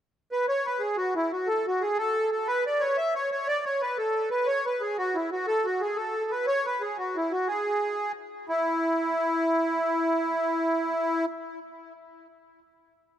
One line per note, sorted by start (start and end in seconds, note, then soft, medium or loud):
0.32 0.46 B4 medium
0.48 0.67 C#5 medium
0.66 0.82 B4 medium
0.80 0.97 G#4 medium
0.97 1.14 F#4 medium
1.16 1.32 E4 medium
1.32 1.48 F#4 medium
1.47 1.66 A4 medium
1.67 1.83 F#4 medium
1.81 1.98 G#4 medium
1.98 2.30 A4 loud
2.32 2.48 A4 medium
2.47 2.64 B4 loud
2.66 2.82 D5 medium
2.80 2.97 C#5 medium
2.97 3.14 E5 loud
3.15 3.30 C#5 medium
3.32 3.48 C#5 medium
3.48 3.65 D5 loud
3.65 3.82 C#5 medium
3.81 3.98 B4 medium
3.98 4.29 A4 medium
4.31 4.47 B4 medium
4.47 4.66 C#5 loud
4.66 4.82 B4 medium
4.81 4.97 G#4 medium
4.98 5.16 F#4 medium
5.15 5.30 E4 medium
5.32 5.46 F#4 medium
5.47 5.66 A4 loud
5.65 5.81 F#4 medium
5.81 5.97 G#4 medium
5.96 6.32 A4 medium
6.31 6.46 B4 medium
6.47 6.66 C#5 loud
6.66 6.82 B4 medium
6.81 6.97 G#4 medium
6.98 7.17 F#4 medium
7.16 7.32 E4 medium
7.32 7.48 F#4 medium
7.47 8.12 G#4 medium
8.49 11.25 E4 medium